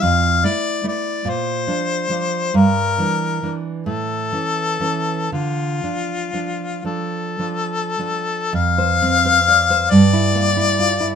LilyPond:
<<
  \new Staff \with { instrumentName = "Harmonica" } { \time 6/8 \key d \minor \tempo 4. = 45 f''8 d''8 d''8 c''4. | bes'4 r8 a'4. | f'4. a'4. | \key g \dorian f''4. d''4. | }
  \new Staff \with { instrumentName = "Nylon-string guitar" } { \time 6/8 \key d \minor f,8 <a e'>8 <a e'>8 bes,8 <f d'>8 <f d'>8 | g,8 <e d'>8 <e d'>8 a,8 <e cis'>8 <e cis'>8 | d8 <f d'>8 <f d'>8 <f d'>8 <f d'>8 <f d'>8 | \key g \dorian f,16 c''16 c'16 c''16 d''16 c''16 g,16 e'16 bes16 e'16 f'16 e'16 | }
>>